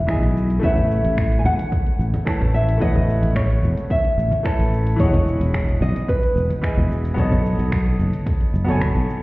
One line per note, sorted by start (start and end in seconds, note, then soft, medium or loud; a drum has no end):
0.00 0.23 E1 medium
0.00 0.07 E3 medium
0.00 0.08 E4 medium
0.00 0.08 G#4 medium
0.00 0.63 B4 medium
0.00 0.32 E5 medium
0.00 0.65 F#5 loud
0.07 0.59 E3 medium
0.07 0.59 E4 medium
0.07 0.60 G#4 medium
0.07 0.60 D#5 medium
0.07 0.61 G#5 medium
0.07 finger snap loud
0.07 kick loud
0.07 closed hi-hat medium
0.07 shaker soft
0.23 0.59 B1 medium
0.23 closed hi-hat soft
0.37 shaker medium
0.50 closed hi-hat soft
0.50 shaker soft
0.60 1.00 A1 medium
0.60 2.08 A3 loud
0.60 2.09 E4 medium
0.60 2.10 B4 medium
0.60 kick loud
0.60 closed hi-hat medium
0.64 2.11 C#5 medium
0.64 1.14 E5 loud
0.64 2.12 F#5 loud
0.64 shaker soft
0.77 closed hi-hat soft
0.77 high conga medium
0.77 low conga medium
0.91 shaker medium
1.04 1.40 A1 medium
1.04 closed hi-hat soft
1.04 shaker soft
1.18 finger snap loud
1.18 kick loud
1.18 closed hi-hat medium
1.18 shaker soft
1.32 closed hi-hat soft
1.39 1.45 G#5 medium
1.45 1.56 E1 loud
1.45 2.54 F#5 loud
1.45 high conga medium
1.45 shaker medium
1.59 closed hi-hat soft
1.59 shaker soft
1.72 kick loud
1.72 closed hi-hat medium
1.72 shaker soft
1.87 closed hi-hat soft
1.99 2.10 A1 medium
1.99 shaker medium
2.14 closed hi-hat soft
2.14 high conga medium
2.14 shaker soft
2.25 2.76 A3 medium
2.25 2.78 E4 medium
2.25 2.78 B4 medium
2.25 2.79 C#5 medium
2.25 2.79 A5 loud
2.25 finger snap loud
2.25 kick loud
2.25 closed hi-hat medium
2.25 shaker soft
2.40 2.77 A1 medium
2.40 closed hi-hat soft
2.40 low conga medium
2.54 2.81 E5 loud
2.54 shaker medium
2.69 closed hi-hat soft
2.69 shaker soft
2.78 3.18 A1 medium
2.78 4.26 A3 medium
2.78 4.27 E4 medium
2.78 4.28 B4 medium
2.78 kick loud
2.82 4.29 C#5 medium
2.82 3.35 D#5 loud
2.82 4.30 F#5 loud
2.82 closed hi-hat medium
2.82 shaker soft
2.95 closed hi-hat soft
2.95 high conga medium
2.95 low conga medium
3.10 shaker medium
3.23 3.59 A1 loud
3.23 closed hi-hat soft
3.23 shaker soft
3.36 3.90 C#5 loud
3.36 finger snap loud
3.36 kick loud
3.36 closed hi-hat medium
3.36 shaker soft
3.50 closed hi-hat soft
3.63 3.74 E1 medium
3.63 high conga medium
3.63 shaker medium
3.77 closed hi-hat soft
3.77 shaker soft
3.90 4.47 E5 loud
3.90 kick loud
3.90 closed hi-hat medium
3.90 shaker soft
4.05 closed hi-hat soft
4.18 4.29 A1 medium
4.18 shaker medium
4.31 closed hi-hat soft
4.31 high conga medium
4.31 shaker soft
4.43 4.95 A3 medium
4.43 4.96 E4 medium
4.43 5.01 A4 medium
4.43 4.96 B4 medium
4.43 4.97 C#5 medium
4.43 4.97 A5 medium
4.43 finger snap loud
4.43 kick loud
4.43 closed hi-hat medium
4.43 shaker soft
4.59 4.95 A1 medium
4.59 closed hi-hat soft
4.74 shaker medium
4.87 closed hi-hat soft
4.87 shaker soft
4.96 5.36 E1 loud
4.96 6.45 E3 loud
4.96 6.46 E4 medium
4.96 6.47 G#4 medium
4.96 5.81 C#5 loud
4.96 kick medium
4.96 closed hi-hat medium
5.01 6.47 D#5 medium
5.01 6.48 F#5 loud
5.01 shaker soft
5.13 closed hi-hat soft
5.13 high conga medium
5.13 low conga medium
5.28 shaker medium
5.41 5.77 E1 medium
5.41 closed hi-hat soft
5.41 shaker soft
5.54 finger snap loud
5.54 kick loud
5.54 closed hi-hat medium
5.54 shaker soft
5.69 closed hi-hat soft
5.81 5.92 B1 loud
5.81 6.10 D#5 loud
5.81 high conga medium
5.81 shaker medium
5.96 closed hi-hat soft
5.96 shaker soft
6.08 7.14 B4 loud
6.08 kick loud
6.08 closed hi-hat medium
6.08 shaker soft
6.23 closed hi-hat soft
6.36 6.47 E1 medium
6.36 shaker medium
6.49 closed hi-hat soft
6.49 high conga medium
6.49 shaker soft
6.61 7.14 E3 medium
6.61 7.14 E4 medium
6.61 7.14 G#4 medium
6.61 7.15 D#5 medium
6.61 7.15 G#5 medium
6.61 finger snap medium
6.61 kick medium
6.61 closed hi-hat medium
6.61 shaker soft
6.77 7.13 E1 loud
6.77 closed hi-hat soft
6.77 low conga medium
6.92 shaker medium
7.05 closed hi-hat soft
7.05 shaker soft
7.14 7.54 B1 loud
7.14 8.63 B3 loud
7.14 8.64 F#4 medium
7.14 8.65 A4 medium
7.14 8.77 A4 medium
7.14 kick medium
7.14 closed hi-hat medium
7.19 8.66 C#5 medium
7.19 8.66 D#5 loud
7.19 shaker soft
7.32 closed hi-hat soft
7.32 high conga medium
7.32 low conga medium
7.46 shaker medium
7.59 7.95 B1 medium
7.59 closed hi-hat soft
7.59 shaker soft
7.72 finger snap loud
7.72 kick loud
7.72 closed hi-hat medium
7.72 shaker soft
7.86 closed hi-hat soft
7.99 8.10 F#1 loud
7.99 high conga medium
7.99 shaker medium
8.13 closed hi-hat soft
8.13 shaker soft
8.26 kick loud
8.26 closed hi-hat medium
8.26 shaker soft
8.41 closed hi-hat soft
8.54 8.91 F#1 medium
8.54 shaker medium
8.65 9.23 B3 loud
8.65 9.23 F#4 medium
8.65 9.23 A4 medium
8.65 closed hi-hat soft
8.65 high conga medium
8.69 9.23 C#5 medium
8.69 9.23 G#5 loud
8.69 shaker soft
8.81 finger snap loud
8.81 kick loud
8.81 closed hi-hat medium
8.81 shaker soft
8.95 9.06 B1 loud
8.95 closed hi-hat soft
9.10 shaker medium